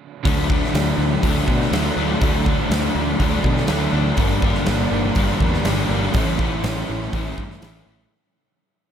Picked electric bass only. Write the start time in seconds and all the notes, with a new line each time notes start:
0.25 D2
0.74 D2
0.98 D2
1.23 D2
1.48 B2
1.72 D2
1.97 D2
2.22 D2
2.70 D2
2.95 D2
3.20 D2
3.44 B2
3.69 D2
3.93 D2
4.17 G1
4.67 G1
4.92 G1
5.16 G1
5.41 E2
5.65 G1
5.89 G1
6.14 A1
6.64 A1
6.90 A1
7.13 A1
7.37 G2
7.63 A1
7.87 A1